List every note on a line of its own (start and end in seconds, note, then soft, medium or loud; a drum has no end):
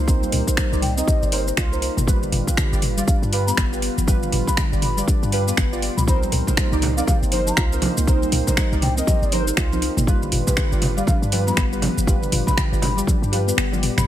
0.00 0.27 C2 medium
0.00 2.04 A#3 medium
0.00 2.04 D#4 medium
0.00 2.04 C5 loud
0.07 0.22 C4 loud
0.07 0.44 D#4 loud
0.07 0.44 A#4 medium
0.07 0.44 C5 loud
0.07 kick loud
0.07 shaker medium
0.22 0.32 G3 medium
0.22 shaker soft
0.32 0.42 C2 loud
0.32 0.46 A#4 medium
0.32 open hi-hat medium
0.32 mid tom medium
0.48 0.66 D#4 medium
0.48 0.66 A#4 medium
0.48 0.66 C5 loud
0.48 kick medium
0.48 shaker medium
0.57 0.71 G3 medium
0.57 finger snap loud
0.57 kick loud
0.57 shaker medium
0.72 1.02 C2 medium
0.72 0.83 D#4 medium
0.72 0.83 A#4 medium
0.72 0.83 D5 medium
0.72 shaker soft
0.82 0.94 G5 loud
0.82 open hi-hat medium
0.82 mid tom medium
0.97 1.03 C4 loud
0.97 1.30 D#4 medium
0.97 1.30 A#4 medium
0.97 1.47 D#5 loud
0.97 1.30 D#5 medium
0.97 shaker medium
1.07 1.15 G4 medium
1.07 kick loud
1.07 shaker medium
1.22 1.52 G1 loud
1.22 shaker soft
1.32 1.47 D#4 loud
1.32 1.47 A#4 medium
1.32 1.46 C5 medium
1.32 1.47 C5 loud
1.32 open hi-hat medium
1.47 1.57 D#4 medium
1.47 shaker medium
1.57 1.89 C2 loud
1.57 1.65 F4 loud
1.57 finger snap loud
1.57 kick loud
1.57 shaker medium
1.72 1.83 D#4 medium
1.72 1.78 A#4 medium
1.72 1.83 A#4 medium
1.72 1.83 C5 medium
1.72 shaker soft
1.82 1.96 D#4 medium
1.82 open hi-hat medium
1.97 2.27 G1 medium
1.97 2.07 A#3 medium
1.97 mid tom medium
1.97 shaker medium
2.07 2.21 G3 loud
2.07 6.04 G3 medium
2.07 6.04 F4 medium
2.07 2.44 F4 loud
2.07 2.44 G4 medium
2.07 6.03 B4 medium
2.07 2.44 B4 loud
2.07 kick loud
2.07 shaker medium
2.22 2.32 D3 medium
2.22 shaker soft
2.32 2.42 G1 loud
2.32 2.46 F4 medium
2.32 open hi-hat medium
2.32 mid tom medium
2.47 2.67 F4 medium
2.47 2.67 G4 medium
2.47 2.67 B4 loud
2.47 kick medium
2.47 shaker medium
2.57 2.71 D3 medium
2.57 finger snap loud
2.57 kick loud
2.57 shaker medium
2.72 3.02 G1 medium
2.72 2.83 F4 medium
2.72 2.83 G4 medium
2.72 2.83 D5 medium
2.72 shaker soft
2.82 open hi-hat medium
2.82 mid tom medium
2.97 3.03 G3 loud
2.97 3.30 F4 medium
2.97 3.30 G4 medium
2.97 3.30 D5 medium
2.97 3.04 F5 medium
2.97 shaker medium
3.07 3.16 D4 medium
3.07 3.17 F5 medium
3.07 kick loud
3.07 shaker medium
3.22 3.52 G2 loud
3.22 shaker soft
3.32 3.48 F4 loud
3.32 3.46 G4 medium
3.32 3.48 G4 medium
3.32 3.47 B4 loud
3.32 open hi-hat medium
3.47 3.56 B3 medium
3.47 3.63 B5 medium
3.47 shaker medium
3.57 3.89 G1 loud
3.57 3.66 B3 loud
3.57 finger snap loud
3.57 kick loud
3.57 shaker medium
3.72 3.78 F4 medium
3.72 3.83 F4 medium
3.72 3.83 G4 medium
3.72 3.83 B4 medium
3.72 shaker soft
3.82 3.97 B3 medium
3.82 open hi-hat medium
3.97 4.27 G1 medium
3.97 4.07 F3 medium
3.97 shaker medium
4.07 4.22 G3 loud
4.07 4.44 F4 loud
4.07 4.44 G4 medium
4.07 4.44 B4 loud
4.07 kick loud
4.07 shaker medium
4.22 4.32 D3 medium
4.22 shaker soft
4.32 4.42 G1 loud
4.32 4.46 F4 medium
4.32 open hi-hat medium
4.32 mid tom medium
4.47 4.66 F4 medium
4.47 4.66 G4 medium
4.47 4.66 B4 loud
4.47 4.63 B5 loud
4.47 kick medium
4.47 shaker medium
4.57 4.71 D3 medium
4.57 finger snap loud
4.57 kick loud
4.57 shaker medium
4.73 5.02 G1 medium
4.73 4.83 F4 medium
4.73 4.83 G4 medium
4.73 4.83 D5 medium
4.73 shaker soft
4.82 5.01 B5 medium
4.82 open hi-hat medium
4.82 mid tom medium
4.97 5.03 G3 loud
4.97 5.30 F4 medium
4.97 5.30 G4 medium
4.97 5.30 D5 medium
4.97 shaker medium
5.08 5.16 D4 medium
5.08 kick loud
5.08 shaker medium
5.23 5.52 G2 loud
5.23 shaker soft
5.32 5.44 F4 loud
5.32 5.46 G4 medium
5.32 5.44 G4 medium
5.32 5.44 B4 loud
5.32 open hi-hat medium
5.47 5.56 B3 medium
5.47 5.58 F4 medium
5.47 5.58 G4 medium
5.47 5.58 B4 medium
5.47 shaker medium
5.57 5.89 G1 loud
5.57 5.65 B3 loud
5.57 finger snap loud
5.57 kick loud
5.57 shaker medium
5.72 5.91 F4 medium
5.72 5.78 F4 medium
5.72 5.91 G4 medium
5.72 5.91 D5 loud
5.72 shaker soft
5.82 5.97 B3 medium
5.82 open hi-hat medium
5.97 6.27 C2 medium
5.97 6.07 F3 medium
5.97 6.04 B5 medium
5.97 mid tom medium
5.97 shaker medium
6.07 10.04 A#3 medium
6.07 6.22 C4 loud
6.07 10.04 D#4 medium
6.07 6.44 D#4 loud
6.07 6.44 A#4 medium
6.07 10.04 C5 loud
6.07 6.44 C5 loud
6.07 6.17 B5 medium
6.07 kick loud
6.07 shaker medium
6.22 6.32 G3 medium
6.22 shaker soft
6.32 6.42 C2 loud
6.32 6.46 A#4 medium
6.32 open hi-hat medium
6.32 mid tom medium
6.47 6.66 D#4 medium
6.47 6.66 A#4 medium
6.47 6.66 C5 loud
6.47 kick medium
6.47 low conga medium
6.47 shaker medium
6.57 6.71 G3 medium
6.57 finger snap loud
6.57 kick loud
6.57 shaker medium
6.72 7.02 C2 medium
6.72 6.83 D#4 medium
6.72 6.83 A#4 medium
6.72 6.83 D5 medium
6.72 shaker soft
6.82 open hi-hat medium
6.82 mid tom medium
6.82 low conga loud
6.97 7.03 C4 loud
6.97 7.30 D#4 medium
6.97 7.30 A#4 medium
6.97 7.30 D5 medium
6.97 7.04 F5 medium
6.97 shaker medium
7.07 7.15 G4 medium
7.07 7.17 F5 medium
7.07 kick loud
7.07 high conga loud
7.07 low conga loud
7.07 shaker medium
7.22 7.52 G1 loud
7.22 shaker soft
7.32 7.47 D#4 loud
7.32 7.47 A#4 medium
7.32 7.46 C5 medium
7.32 7.47 C5 loud
7.32 open hi-hat medium
7.32 high conga medium
7.47 7.57 D#4 medium
7.47 7.63 A#5 medium
7.47 high conga medium
7.47 shaker medium
7.57 7.89 C2 loud
7.57 7.66 F4 loud
7.57 finger snap loud
7.57 kick loud
7.57 shaker medium
7.72 7.81 C4 medium
7.72 7.83 D#4 medium
7.72 7.83 A#4 medium
7.72 7.82 C5 medium
7.72 shaker soft
7.82 7.97 D#4 medium
7.82 open hi-hat medium
7.82 high conga loud
7.82 low conga loud
7.97 8.27 C2 medium
7.97 8.07 A#3 medium
7.97 shaker medium
8.07 8.22 C4 loud
8.07 8.44 D#4 loud
8.07 8.44 A#4 medium
8.07 8.44 C5 loud
8.07 kick loud
8.07 shaker medium
8.22 8.32 G3 medium
8.22 shaker soft
8.32 8.42 C2 loud
8.32 8.46 A#4 medium
8.32 open hi-hat medium
8.32 mid tom medium
8.47 8.66 D#4 medium
8.47 8.66 A#4 medium
8.47 8.66 C5 loud
8.47 kick medium
8.47 high conga medium
8.47 low conga medium
8.47 shaker medium
8.57 8.71 G3 medium
8.57 finger snap loud
8.57 kick loud
8.57 shaker medium
8.72 9.02 C2 medium
8.72 8.83 D#4 medium
8.72 8.83 A#4 medium
8.72 8.83 D5 medium
8.72 shaker soft
8.82 8.94 G5 medium
8.82 open hi-hat medium
8.82 mid tom medium
8.82 low conga medium
8.97 9.03 C4 loud
8.97 9.30 D#4 medium
8.97 9.30 A#4 medium
8.97 9.47 D#5 loud
8.97 9.30 D#5 medium
8.97 shaker medium
9.07 9.15 G4 medium
9.07 kick loud
9.07 high conga medium
9.07 shaker medium
9.22 9.52 G1 loud
9.22 shaker soft
9.32 9.47 D#4 loud
9.32 9.47 A#4 medium
9.32 9.46 C5 medium
9.32 9.47 C5 loud
9.32 open hi-hat medium
9.32 high conga medium
9.47 9.57 D#4 medium
9.47 shaker medium
9.57 9.89 C2 loud
9.57 9.65 F4 loud
9.57 finger snap loud
9.57 kick loud
9.57 shaker medium
9.72 9.81 C4 medium
9.72 9.83 D#4 medium
9.72 9.83 A#4 medium
9.72 9.83 C5 medium
9.72 high conga medium
9.72 shaker soft
9.82 9.97 D#4 medium
9.82 open hi-hat medium
9.97 10.27 G1 medium
9.97 10.07 A#3 medium
9.97 mid tom loud
9.97 shaker medium
10.07 10.21 G3 loud
10.07 14.03 G3 medium
10.07 12.05 F4 medium
10.07 10.44 F4 loud
10.07 10.44 G4 loud
10.07 14.03 B4 medium
10.07 10.44 B4 loud
10.07 kick loud
10.07 shaker medium
10.22 10.32 D3 medium
10.22 shaker soft
10.32 10.42 G1 loud
10.32 10.46 F4 medium
10.32 open hi-hat medium
10.32 mid tom medium
10.47 10.66 F4 medium
10.47 10.66 G4 medium
10.47 10.66 B4 loud
10.47 kick medium
10.47 low conga medium
10.47 shaker medium
10.57 10.71 D3 medium
10.57 finger snap loud
10.57 kick loud
10.57 shaker medium
10.72 11.02 G1 medium
10.72 10.82 F4 medium
10.72 10.82 G4 medium
10.72 10.82 D5 medium
10.72 shaker soft
10.82 open hi-hat medium
10.82 mid tom medium
10.82 low conga loud
10.97 11.03 G3 loud
10.97 11.30 F4 medium
10.97 11.30 G4 medium
10.97 11.30 D5 medium
10.97 11.04 F5 medium
10.97 shaker medium
11.07 11.15 D4 medium
11.07 11.17 F5 medium
11.07 kick loud
11.07 high conga medium
11.07 low conga loud
11.07 shaker medium
11.22 11.52 G2 loud
11.22 shaker soft
11.32 11.47 F4 loud
11.32 11.46 G4 medium
11.32 11.47 G4 medium
11.32 11.47 B4 loud
11.32 open hi-hat medium
11.32 high conga medium
11.47 11.56 B3 medium
11.47 11.63 B5 medium
11.47 high conga medium
11.47 shaker medium
11.57 11.89 G1 loud
11.57 11.65 B3 loud
11.57 finger snap loud
11.57 kick loud
11.57 shaker medium
11.72 11.81 G3 medium
11.72 11.82 F4 medium
11.72 11.82 G4 medium
11.72 11.82 B4 medium
11.72 shaker soft
11.82 11.96 B3 medium
11.82 open hi-hat medium
11.82 high conga loud
11.82 low conga loud
11.97 12.27 G1 medium
11.97 12.07 F3 medium
11.97 shaker medium
12.07 12.21 G3 loud
12.07 12.44 F4 loud
12.07 12.44 G4 loud
12.07 14.06 G4 medium
12.07 12.44 B4 loud
12.07 kick loud
12.07 shaker medium
12.22 12.32 D3 medium
12.22 shaker soft
12.32 12.42 G1 loud
12.32 12.46 F4 medium
12.32 open hi-hat medium
12.32 mid tom medium
12.47 12.66 F4 medium
12.47 12.66 G4 medium
12.47 12.66 B4 medium
12.47 12.63 B5 loud
12.47 kick medium
12.47 high conga medium
12.47 low conga medium
12.47 shaker medium
12.57 12.71 D3 medium
12.57 finger snap loud
12.57 kick loud
12.57 shaker medium
12.72 13.02 G1 medium
12.72 12.82 F4 medium
12.72 12.82 G4 medium
12.72 12.82 D5 medium
12.72 shaker soft
12.82 13.01 B5 medium
12.82 open hi-hat medium
12.82 mid tom medium
12.82 low conga loud
12.97 13.03 G3 loud
12.97 13.30 F4 medium
12.97 13.30 G4 medium
12.97 13.30 D5 medium
12.97 shaker medium
13.07 13.15 D4 medium
13.07 kick loud
13.07 high conga medium
13.07 shaker medium
13.22 13.52 G2 loud
13.22 shaker soft
13.32 13.44 F4 loud
13.32 13.46 G4 medium
13.32 13.44 G4 medium
13.32 13.44 B4 loud
13.32 open hi-hat medium
13.32 high conga medium
13.47 13.55 B3 medium
13.47 13.57 F4 medium
13.47 13.58 G4 medium
13.47 13.58 B4 medium
13.47 shaker medium
13.57 13.89 G1 loud
13.57 13.65 B3 loud
13.57 finger snap loud
13.57 shaker medium
13.72 13.81 G3 medium
13.72 13.91 F4 medium
13.72 13.91 G4 medium
13.72 13.91 D5 loud
13.72 high tom medium
13.72 high conga medium
13.72 shaker soft
13.82 13.96 B3 medium
13.82 open hi-hat medium
13.82 mid tom medium
13.97 14.04 G1 medium
13.97 14.07 F3 medium
13.97 14.04 B5 medium
13.97 finger snap medium
13.97 mid tom medium
13.97 mid tom loud
13.97 shaker medium